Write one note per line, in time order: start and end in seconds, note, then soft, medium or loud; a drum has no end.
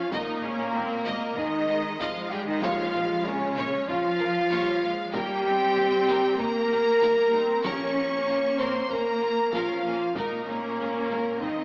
0.00 0.13 C#4 medium
0.00 0.12 F4 loud
0.00 0.13 F5 loud
0.11 0.20 G#1 loud
0.11 1.37 A#2 loud
0.11 1.35 A#3 loud
0.11 0.42 D#4 medium
0.11 1.36 A#4 loud
0.11 0.41 D#5 medium
0.11 taiko loud
0.42 0.50 G#1 medium
0.42 0.75 C#4 loud
0.42 0.51 G#4 medium
0.74 0.82 G#1 medium
0.74 1.06 C4 medium
0.74 0.82 A#4 medium
1.06 1.14 G#1 medium
1.06 1.37 A#3 medium
1.06 1.35 D#5 medium
1.37 1.45 G#1 medium
1.37 2.00 D#3 medium
1.37 3.85 G#3 loud
1.37 2.00 D#4 loud
1.37 1.47 G#4 medium
1.37 2.01 D#5 loud
1.37 taiko low medium
1.69 1.77 G#1 medium
1.69 1.78 A#4 medium
2.00 2.08 G#1 medium
2.00 2.31 F3 loud
2.00 2.32 F4 loud
2.00 2.30 D#5 loud
2.00 2.31 F5 medium
2.00 taiko medium
2.30 2.39 G#1 medium
2.30 2.47 G3 loud
2.30 2.47 G4 loud
2.30 2.40 G#4 medium
2.30 2.48 G5 loud
2.47 2.63 D#3 loud
2.47 2.63 D#4 loud
2.47 2.63 D#5 loud
2.62 2.70 A#1 medium
2.62 3.53 A#2 loud
2.62 3.25 F3 loud
2.62 3.26 F4 loud
2.62 2.92 C#5 loud
2.62 3.25 F5 loud
2.62 taiko loud
2.94 3.02 A#1 medium
2.94 3.02 F4 medium
3.25 3.33 A#1 medium
3.25 3.88 C#3 loud
3.25 3.89 C#4 loud
3.25 3.33 A#4 medium
3.25 3.89 C#5 loud
3.57 3.65 A#1 loud
3.57 3.86 C#5 loud
3.88 3.96 A#1 medium
3.88 4.50 F3 medium
3.88 5.11 F3 loud
3.88 3.96 F4 medium
3.88 4.97 F4 loud
3.88 5.14 F5 loud
3.88 taiko low medium
4.19 4.28 A#1 medium
4.19 4.27 A#4 medium
4.51 4.59 A#1 loud
4.51 4.82 G3 medium
4.51 4.80 C#5 loud
4.51 taiko medium
4.82 4.90 A#1 medium
4.82 5.13 G#3 medium
4.82 4.92 F4 medium
5.13 5.22 D#2 loud
5.13 6.37 G3 loud
5.13 5.46 A#3 loud
5.13 6.37 G4 loud
5.13 5.43 A#4 medium
5.13 6.37 G5 loud
5.13 taiko loud
5.45 5.53 D#2 medium
5.45 6.40 C4 loud
5.45 5.53 D#4 medium
5.76 5.84 D#2 medium
5.76 5.85 G4 medium
6.08 6.16 D#2 loud
6.08 6.37 A#4 medium
6.38 6.47 D#2 medium
6.38 7.02 A#3 medium
6.38 7.65 A#3 loud
6.38 6.46 D#4 medium
6.38 7.62 A#4 loud
6.38 7.65 A#5 loud
6.38 taiko low medium
6.71 6.79 D#2 medium
6.71 6.79 G4 medium
7.02 7.10 D#2 loud
7.02 7.34 G3 medium
7.02 7.32 A#4 loud
7.02 taiko medium
7.33 7.41 D#2 medium
7.33 7.65 C4 medium
7.33 7.41 D#4 medium
7.64 7.72 A#1 medium
7.64 8.55 A#2 loud
7.64 9.54 A#3 medium
7.64 8.57 C#4 loud
7.64 7.94 A#4 loud
7.64 8.58 C#5 loud
7.64 8.57 C#6 loud
7.64 taiko loud
7.96 8.04 A#1 medium
7.96 8.05 C#4 medium
8.28 8.36 A#1 medium
8.28 8.37 F4 medium
8.58 8.67 A#1 loud
8.58 8.91 C4 loud
8.58 8.89 A#4 medium
8.58 8.90 C5 loud
8.58 8.91 C6 loud
8.89 8.98 A#1 medium
8.89 9.52 A#3 loud
8.89 9.00 C#4 medium
8.89 9.53 A#4 loud
8.89 9.54 A#5 loud
8.89 taiko low medium
9.22 9.30 A#1 medium
9.22 9.30 F4 medium
9.53 9.61 A#1 medium
9.53 10.16 F3 medium
9.53 9.85 C#4 medium
9.53 10.16 F4 loud
9.53 9.83 A#4 medium
9.53 10.16 F5 medium
9.53 taiko medium
9.84 9.92 A#1 medium
9.84 10.15 A#3 medium
9.84 9.94 C#4 medium
10.15 10.23 G#1 medium
10.15 11.39 A#2 medium
10.15 11.39 A#3 loud
10.15 10.46 D#4 medium
10.15 10.46 A#4 medium
10.15 11.40 A#4 medium
10.15 taiko loud
10.47 10.56 G#1 medium
10.47 11.41 C#4 medium
10.47 10.57 D#4 medium
10.79 10.87 G#1 medium
10.79 10.88 G#4 medium
11.10 11.18 G#1 medium
11.10 11.39 A#4 medium
11.40 11.49 G#1 medium
11.40 11.64 D#3 medium
11.40 11.64 C4 medium
11.40 11.64 D#4 loud
11.40 11.51 D#4 medium
11.40 11.64 D#5 medium
11.40 taiko low medium